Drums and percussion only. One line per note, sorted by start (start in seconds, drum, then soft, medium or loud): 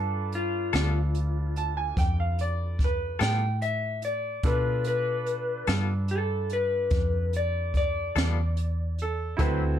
0.32 closed hi-hat soft
0.73 snare medium
0.73 closed hi-hat medium
1.15 closed hi-hat soft
1.56 closed hi-hat soft
1.97 kick medium
1.97 closed hi-hat medium
2.38 closed hi-hat soft
2.79 kick medium
2.79 closed hi-hat medium
3.20 snare medium
3.20 closed hi-hat medium
3.62 closed hi-hat medium
4.02 closed hi-hat medium
4.43 kick loud
4.43 closed hi-hat medium
4.84 closed hi-hat medium
5.26 closed hi-hat soft
5.67 snare medium
5.67 closed hi-hat medium
6.08 closed hi-hat soft
6.49 closed hi-hat soft
6.90 kick medium
6.90 closed hi-hat medium
7.33 closed hi-hat soft
7.74 kick medium
7.74 closed hi-hat soft
8.16 snare medium
8.16 closed hi-hat medium
8.57 closed hi-hat medium
8.98 closed hi-hat soft
9.39 kick medium
9.39 closed hi-hat medium